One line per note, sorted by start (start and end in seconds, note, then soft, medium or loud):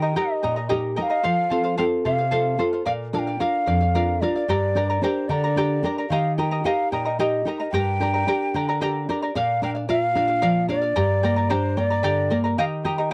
0.00 0.15 D#3 medium
0.00 0.15 D#4 soft
0.00 0.14 G4 soft
0.00 0.15 A#4 medium
0.00 0.15 A#4 soft
0.00 0.15 D#5 soft
0.00 0.19 G5 medium
0.00 0.16 A#5 soft
0.16 0.59 D#4 soft
0.16 0.59 G4 soft
0.16 0.43 G4 medium
0.16 0.60 A#4 soft
0.16 0.42 A#4 medium
0.16 0.42 D#5 medium
0.16 0.71 D#5 medium
0.16 0.42 G5 medium
0.16 0.43 A#5 medium
0.43 0.96 A#2 medium
0.43 0.56 A#4 medium
0.43 0.56 D#5 medium
0.43 0.57 G5 soft
0.43 0.55 A#5 medium
0.56 0.69 A#4 soft
0.56 0.69 D#5 soft
0.56 0.69 A#5 soft
0.69 0.97 D#4 soft
0.69 0.97 G4 medium
0.69 0.97 G4 soft
0.69 0.95 A#4 medium
0.69 0.97 A#4 soft
0.69 0.96 D#5 medium
0.69 0.95 G5 medium
0.69 0.96 A#5 medium
0.96 1.19 D#4 soft
0.96 1.19 G4 soft
0.96 1.10 A#4 medium
0.96 1.19 A#4 soft
0.96 1.09 D#5 medium
0.96 1.10 G5 medium
0.96 1.03 G5 medium
0.96 1.08 A#5 medium
1.02 1.75 F5 medium
1.10 1.23 A#4 soft
1.10 1.24 D#5 soft
1.10 1.24 A#5 soft
1.23 1.77 F3 medium
1.23 1.49 A4 medium
1.23 1.50 C5 medium
1.23 1.50 F5 medium
1.50 1.77 C4 soft
1.50 1.78 F4 soft
1.50 1.64 A4 soft
1.50 1.78 A4 soft
1.50 1.63 C5 medium
1.50 1.63 F5 medium
1.64 1.77 C5 soft
1.64 1.77 F5 soft
1.77 2.22 C4 soft
1.77 2.22 F4 soft
1.77 2.04 A4 medium
1.77 2.22 A4 soft
1.77 2.04 C5 medium
1.77 2.05 F5 medium
1.77 1.85 G5 medium
2.05 2.58 C3 medium
2.05 2.19 A4 soft
2.05 2.18 C5 soft
2.05 2.62 F5 medium
2.05 2.17 F5 medium
2.18 2.30 C5 soft
2.18 2.31 F5 soft
2.31 2.57 C4 soft
2.31 2.58 F4 soft
2.31 2.57 A4 medium
2.31 2.58 A4 soft
2.31 2.58 C5 medium
2.31 2.59 F5 medium
2.58 2.80 C4 soft
2.58 2.81 F4 soft
2.58 2.72 A4 soft
2.58 2.81 A4 soft
2.58 2.73 C5 medium
2.58 2.72 F5 medium
2.73 2.87 C5 soft
2.73 2.85 F5 soft
2.85 3.39 A#2 medium
2.85 3.12 A#4 medium
2.85 3.13 D5 medium
2.85 2.92 F5 medium
2.85 3.13 F5 medium
3.13 3.39 D4 soft
3.13 3.39 F4 soft
3.13 3.27 A#4 soft
3.13 3.40 A#4 medium
3.13 3.27 D5 medium
3.13 3.26 F5 medium
3.13 3.20 A5 medium
3.19 3.42 G5 medium
3.27 3.39 D5 soft
3.27 3.40 F5 soft
3.40 3.83 D4 soft
3.40 3.84 F4 soft
3.40 3.65 A#4 medium
3.40 3.84 A#4 soft
3.40 3.66 D5 medium
3.40 4.23 F5 medium
3.40 3.67 F5 medium
3.66 4.20 F2 medium
3.66 3.80 A#4 soft
3.66 3.81 D5 soft
3.66 3.79 F5 soft
3.81 3.94 D5 soft
3.81 3.94 F5 soft
3.94 4.20 D4 soft
3.94 4.21 F4 soft
3.94 4.21 A#4 medium
3.94 4.21 A#4 soft
3.94 4.22 D5 medium
3.94 4.22 F5 medium
4.21 4.43 D4 soft
4.21 4.43 F4 soft
4.21 4.35 A#4 medium
4.21 4.44 A#4 soft
4.21 5.04 D5 medium
4.21 4.36 D5 medium
4.21 4.34 F5 medium
4.36 4.49 D5 soft
4.36 4.49 F5 soft
4.48 5.01 G2 medium
4.48 4.76 G4 medium
4.48 4.75 A#4 medium
4.48 4.75 D5 medium
4.48 4.75 G5 medium
4.48 4.76 A#5 medium
4.75 5.00 D4 soft
4.75 5.01 G4 soft
4.75 5.01 A#4 medium
4.75 4.89 A#4 soft
4.75 4.89 D5 medium
4.75 4.89 G5 soft
4.75 4.89 A#5 medium
4.90 5.02 A#4 soft
4.90 5.03 D5 soft
4.90 5.03 A#5 soft
5.02 5.45 D4 soft
5.02 5.46 G4 soft
5.02 5.30 G4 medium
5.02 5.46 A#4 soft
5.02 5.29 A#4 medium
5.02 5.30 C5 medium
5.02 5.29 D5 medium
5.02 5.28 G5 medium
5.02 5.30 A#5 medium
5.28 5.82 D3 medium
5.28 5.43 A#4 soft
5.28 5.44 D5 soft
5.28 5.90 D5 medium
5.28 5.33 D#5 medium
5.28 5.43 G5 soft
5.28 5.43 A#5 medium
5.44 5.57 A#4 soft
5.44 5.57 D5 soft
5.44 5.57 A#5 medium
5.56 5.82 D4 soft
5.56 5.82 G4 soft
5.56 5.84 G4 medium
5.56 5.83 A#4 soft
5.56 5.84 A#4 medium
5.56 5.84 D5 medium
5.56 5.83 G5 medium
5.56 5.84 A#5 medium
5.83 6.05 D4 soft
5.83 6.05 G4 soft
5.83 6.05 A#4 medium
5.83 5.98 A#4 medium
5.83 5.98 D5 medium
5.83 5.97 G5 soft
5.83 5.97 A#5 medium
5.98 6.11 A#4 soft
5.98 6.11 D5 soft
5.98 6.11 A#5 soft
6.10 6.63 D#3 medium
6.10 6.38 G4 medium
6.10 6.37 A#4 medium
6.10 6.38 D#5 medium
6.10 6.35 F5 medium
6.10 6.37 G5 medium
6.10 6.38 A#5 medium
6.37 6.63 D#4 soft
6.37 6.63 G4 soft
6.37 6.51 A#4 medium
6.37 6.64 A#4 soft
6.37 6.51 D#5 medium
6.37 6.67 G5 medium
6.37 6.51 G5 medium
6.37 6.50 A#5 medium
6.51 6.65 A#4 soft
6.51 6.65 D#5 soft
6.51 6.65 A#5 medium
6.64 7.08 D#4 soft
6.64 7.08 G4 soft
6.64 6.92 G4 medium
6.64 7.08 A#4 soft
6.64 6.91 A#4 medium
6.64 6.92 D#5 medium
6.64 6.91 F5 medium
6.64 6.91 G5 medium
6.64 6.92 A#5 medium
6.92 7.44 A#2 medium
6.92 7.05 A#4 soft
6.92 7.05 D#5 soft
6.92 7.17 G5 medium
6.92 7.05 G5 soft
6.92 7.04 A#5 medium
7.05 7.19 A#4 soft
7.05 7.19 D#5 soft
7.05 7.19 A#5 soft
7.19 7.44 D#4 soft
7.19 7.45 G4 soft
7.19 7.46 G4 medium
7.19 7.45 A#4 soft
7.19 7.46 A#4 medium
7.19 7.46 D#5 medium
7.19 7.45 D#5 medium
7.19 7.45 G5 medium
7.19 7.47 A#5 medium
7.45 7.67 D#4 soft
7.45 7.67 G4 soft
7.45 7.68 A#4 soft
7.45 7.60 A#4 medium
7.45 7.59 D#5 medium
7.45 7.60 G5 medium
7.45 7.58 A#5 medium
7.60 7.73 A#4 soft
7.60 7.73 D#5 soft
7.60 7.73 A#5 soft
7.71 8.25 G2 medium
7.71 8.00 G4 medium
7.71 8.00 A#4 medium
7.71 8.00 D5 medium
7.71 8.76 G5 loud
7.71 7.99 G5 medium
7.71 8.01 A#5 medium
8.00 8.26 D4 soft
8.00 8.26 G4 soft
8.00 8.26 A#4 soft
8.00 8.14 A#4 medium
8.00 8.14 D5 medium
8.00 8.14 G5 medium
8.00 8.13 A#5 medium
8.14 8.27 A#4 soft
8.14 8.27 D5 soft
8.14 8.27 A#5 soft
8.27 8.70 D4 soft
8.27 8.70 G4 soft
8.27 8.54 G4 medium
8.27 8.70 A#4 soft
8.27 8.54 A#4 medium
8.27 8.54 D5 medium
8.27 8.54 G5 medium
8.27 8.55 A#5 medium
8.54 9.06 D3 medium
8.54 8.68 A#4 soft
8.54 8.68 D5 medium
8.54 8.68 G5 soft
8.54 8.67 A#5 medium
8.69 8.81 A#4 soft
8.69 8.81 D5 soft
8.69 8.81 A#5 medium
8.81 9.08 D4 soft
8.81 9.08 G4 soft
8.81 9.08 G4 medium
8.81 9.08 A#4 soft
8.81 9.08 A#4 medium
8.81 9.08 D5 medium
8.81 9.08 G5 medium
8.81 9.09 A#5 medium
9.09 9.30 D4 soft
9.09 9.30 G4 soft
9.09 9.30 A#4 soft
9.09 9.22 A#4 medium
9.09 9.22 D5 medium
9.09 9.22 G5 soft
9.09 9.21 A#5 medium
9.22 9.35 A#4 soft
9.22 9.35 D5 soft
9.22 9.35 A#5 medium
9.35 10.93 A#2 medium
9.35 9.62 A#4 medium
9.35 9.62 D5 medium
9.35 9.61 F5 medium
9.35 9.63 F5 medium
9.62 9.88 D4 soft
9.62 9.76 A#4 medium
9.62 9.75 D5 medium
9.62 9.73 F5 medium
9.62 9.70 G5 medium
9.75 9.88 D5 soft
9.75 9.88 F5 soft
9.89 10.15 F4 soft
9.89 10.14 A#4 medium
9.89 10.15 D5 medium
9.89 10.15 F5 medium
9.89 10.66 F5 medium
10.15 10.41 D4 medium
10.15 10.29 A#4 soft
10.15 10.28 D5 medium
10.15 10.27 F5 medium
10.28 10.41 D5 soft
10.28 10.42 F5 soft
10.42 10.69 F3 soft
10.42 10.67 A#4 medium
10.42 10.68 D5 medium
10.42 10.69 F5 medium
10.69 10.95 D4 soft
10.69 10.82 A#4 medium
10.69 10.82 D5 medium
10.69 11.53 D5 medium
10.69 10.80 F5 medium
10.81 10.95 D5 soft
10.81 10.96 F5 soft
10.96 12.54 G2 medium
10.96 11.23 G4 medium
10.96 11.22 A#4 medium
10.96 11.23 D5 medium
10.96 11.22 G5 medium
10.96 11.23 A#5 medium
11.23 11.50 A#3 medium
11.23 11.36 A#4 soft
11.23 11.36 D5 medium
11.23 11.37 G5 medium
11.23 11.35 A#5 medium
11.36 11.49 A#4 soft
11.36 11.49 D5 soft
11.36 11.49 A#5 soft
11.50 11.76 D4 soft
11.50 11.77 G4 medium
11.50 11.76 A#4 medium
11.50 11.79 C5 medium
11.50 11.76 D5 medium
11.50 11.76 G5 medium
11.50 11.77 A#5 medium
11.77 12.03 A#3 medium
11.77 11.91 A#4 soft
11.77 12.38 D5 medium
11.77 11.90 D5 soft
11.77 11.90 G5 soft
11.77 11.89 A#5 medium
11.90 12.03 A#4 soft
11.90 12.03 D5 soft
11.90 12.03 A#5 soft
12.03 12.30 D3 soft
12.03 12.30 G4 medium
12.03 12.29 A#4 medium
12.03 12.30 D5 medium
12.03 12.29 G5 medium
12.03 12.30 A#5 medium
12.30 12.57 A#3 soft
12.30 12.44 A#4 medium
12.30 12.44 D5 medium
12.30 12.44 G5 soft
12.30 12.43 A#5 medium
12.44 12.58 A#4 soft
12.44 12.58 D5 soft
12.44 12.58 A#5 soft
12.58 13.13 D#3 medium
12.58 12.85 G4 medium
12.58 12.84 A#4 medium
12.58 12.84 D#5 medium
12.58 12.64 F5 medium
12.58 12.83 G5 medium
12.58 12.85 A#5 medium
12.84 13.11 G4 medium
12.84 12.98 A#4 medium
12.84 12.98 D#5 medium
12.84 13.13 G5 medium
12.84 12.98 G5 soft
12.84 12.97 A#5 medium
12.98 13.10 A#4 soft
12.98 13.10 D#5 soft
12.98 13.11 A#5 soft